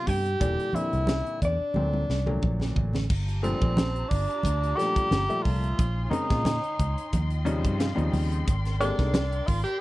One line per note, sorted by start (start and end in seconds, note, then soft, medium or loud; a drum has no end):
0.00 0.22 C3 medium
0.00 0.22 G3 medium
0.00 0.22 A3 medium
0.00 0.22 B3 medium
0.00 0.22 D4 medium
0.06 0.35 G2 medium
0.06 0.76 G4 medium
0.06 0.76 G5 medium
0.06 kick medium
0.06 open hi-hat medium
0.06 muted conga soft
0.26 closed hi-hat soft
0.40 0.55 E1 medium
0.40 0.66 A#2 medium
0.40 0.66 D3 medium
0.40 0.66 E3 medium
0.40 0.67 G3 medium
0.40 0.67 D4 medium
0.40 kick loud
0.40 closed hi-hat medium
0.40 muted conga soft
0.60 closed hi-hat soft
0.73 1.53 A#2 medium
0.73 1.53 D3 medium
0.73 1.53 E3 medium
0.73 1.53 G3 medium
0.73 1.53 C4 medium
0.73 1.42 E4 medium
0.73 1.42 E5 medium
0.73 muted fingered electric bass stroke soft
0.73 closed hi-hat soft
0.73 muted conga soft
0.73 high conga medium
0.93 1.21 C2 medium
0.93 closed hi-hat soft
1.07 snare loud
1.07 closed hi-hat medium
1.07 high conga medium
1.27 closed hi-hat soft
1.42 1.57 E2 medium
1.42 2.72 D4 medium
1.42 2.74 D5 medium
1.42 kick medium
1.42 closed hi-hat medium
1.60 muted fingered electric bass stroke soft
1.74 2.04 D2 medium
1.74 2.02 A#2 medium
1.74 2.02 D3 medium
1.74 2.02 F#3 medium
1.74 2.02 A3 medium
1.74 2.02 C4 medium
1.74 high tom soft
1.74 muted conga soft
1.74 high conga medium
1.93 high tom soft
2.09 2.39 C2 medium
2.09 2.17 A3 soft
2.09 2.17 D4 soft
2.09 snare medium
2.26 2.91 A#2 medium
2.26 2.91 D3 medium
2.26 2.91 F#3 medium
2.26 2.91 A3 medium
2.26 2.91 D4 medium
2.26 mid tom medium
2.26 high conga soft
2.42 2.73 A#1 medium
2.42 kick medium
2.42 high conga soft
2.60 snare medium
2.60 high conga medium
2.76 3.06 A1 medium
2.76 kick medium
2.76 low conga medium
2.93 snare medium
2.93 low conga medium
3.10 3.53 G1 medium
3.10 5.76 F4 medium
3.10 5.76 G4 medium
3.10 5.76 A5 medium
3.10 5.77 A#5 medium
3.10 kick loud
3.10 crash medium
3.10 muted conga soft
3.28 closed hi-hat soft
3.42 3.56 A#2 medium
3.42 3.57 F3 medium
3.42 3.57 G3 medium
3.42 3.57 A3 medium
3.42 4.10 C4 medium
3.42 3.57 D4 loud
3.42 closed hi-hat medium
3.42 muted conga soft
3.61 4.03 A#1 medium
3.61 3.73 A#2 medium
3.61 3.73 F3 medium
3.61 3.73 G3 medium
3.61 3.73 A3 medium
3.61 3.73 D4 medium
3.61 kick medium
3.77 3.85 A3 soft
3.77 3.85 C4 soft
3.77 snare loud
3.77 closed hi-hat medium
3.77 high conga loud
3.96 closed hi-hat soft
4.09 4.26 G1 medium
4.09 4.78 D4 medium
4.09 kick medium
4.09 open hi-hat medium
4.30 closed hi-hat soft
4.43 4.72 D2 medium
4.43 kick medium
4.43 closed hi-hat medium
4.43 muted conga soft
4.43 high conga medium
4.64 closed hi-hat soft
4.77 5.16 A#2 medium
4.77 5.17 F3 medium
4.77 5.17 G3 medium
4.77 5.17 A3 medium
4.77 5.17 D4 medium
4.77 5.44 G4 loud
4.77 snare soft
4.77 closed hi-hat medium
4.96 kick medium
4.96 closed hi-hat soft
5.11 5.26 G1 loud
5.11 snare loud
5.11 closed hi-hat medium
5.11 high conga medium
5.29 5.78 A#2 medium
5.29 5.79 F3 medium
5.29 5.78 G3 medium
5.29 5.78 A3 medium
5.29 5.78 E5 medium
5.29 closed hi-hat soft
5.43 5.73 C2 medium
5.43 6.04 F4 medium
5.43 kick medium
5.43 open hi-hat medium
5.43 muted conga soft
5.64 closed hi-hat soft
5.78 6.07 A#1 medium
5.78 7.13 D#4 medium
5.78 7.13 C#5 medium
5.78 7.13 G#5 medium
5.78 9.81 C6 medium
5.78 kick loud
5.78 closed hi-hat medium
5.78 muted conga soft
6.05 6.12 F4 medium
6.10 6.25 C#3 medium
6.10 6.25 G#3 medium
6.10 6.25 A#3 medium
6.10 6.25 C4 medium
6.10 7.45 D#4 loud
6.10 6.25 D#4 loud
6.10 closed hi-hat medium
6.10 muted conga soft
6.10 low conga medium
6.29 6.58 A#2 medium
6.29 6.42 C#3 medium
6.29 6.42 G#3 medium
6.29 6.42 A#3 medium
6.29 6.42 C4 medium
6.29 6.42 F4 medium
6.29 kick medium
6.29 snare soft
6.29 closed hi-hat soft
6.45 6.54 C4 soft
6.45 6.54 D#4 soft
6.45 snare loud
6.45 closed hi-hat medium
6.45 high conga medium
6.45 low conga medium
6.64 closed hi-hat soft
6.79 6.94 C#2 medium
6.79 kick medium
6.79 closed hi-hat medium
6.98 closed hi-hat soft
7.12 7.64 D#2 medium
7.12 8.46 F4 medium
7.12 8.46 D#5 medium
7.12 9.81 G5 medium
7.12 kick medium
7.12 closed hi-hat medium
7.12 muted conga soft
7.12 high conga medium
7.30 closed hi-hat soft
7.45 7.85 C3 medium
7.45 7.85 C#3 medium
7.45 7.85 F3 medium
7.45 7.85 G3 medium
7.45 7.85 D#4 loud
7.45 7.77 C#5 medium
7.45 closed hi-hat medium
7.64 7.92 G2 medium
7.64 kick medium
7.64 closed hi-hat soft
7.79 8.10 F5 medium
7.79 snare loud
7.79 closed hi-hat medium
7.95 8.11 D#2 medium
7.95 8.46 C#3 medium
7.95 8.46 F3 medium
7.95 8.46 G3 medium
7.95 8.46 C4 medium
7.95 8.46 D#4 medium
7.95 closed hi-hat soft
8.12 8.42 D#2 medium
8.12 8.44 G5 medium
8.12 open hi-hat medium
8.12 muted conga soft
8.12 high conga medium
8.32 closed hi-hat soft
8.47 8.90 G#1 medium
8.47 9.81 A#4 medium
8.47 9.81 D5 medium
8.47 kick loud
8.47 closed hi-hat medium
8.47 muted conga soft
8.65 snare soft
8.65 closed hi-hat soft
8.80 8.94 D3 medium
8.80 8.94 G#3 medium
8.80 8.94 A#3 medium
8.80 8.94 C4 medium
8.80 9.49 D4 loud
8.80 8.94 G4 loud
8.80 closed hi-hat medium
8.80 muted conga soft
8.98 9.40 C2 medium
8.98 9.11 D3 medium
8.98 9.11 G#3 medium
8.98 9.11 A#3 medium
8.98 9.11 C4 medium
8.98 9.11 D#4 medium
8.98 kick medium
8.98 snare soft
9.14 9.23 C4 soft
9.14 9.23 A#4 soft
9.14 snare loud
9.14 closed hi-hat medium
9.14 high conga medium
9.32 closed hi-hat soft
9.47 9.63 G#1 medium
9.47 9.63 F4 medium
9.47 kick medium
9.47 open hi-hat medium
9.64 9.81 G4 medium
9.64 closed hi-hat soft